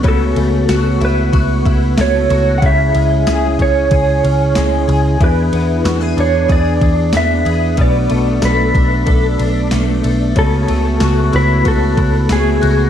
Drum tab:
RD |xxxxxxxx|xxxxxxxx|xxxxxxxx|xxxxxxxx|
TB |--x---x-|--x---x-|--x---x-|--x---x-|
SD |--o---o-|--o---o-|--o---o-|--o---o-|
BD |o---oo--|o--oo---|o---oo--|o--oo---|

RD |xxxxxxxx|
TB |--x---x-|
SD |--o---o-|
BD |o---oo--|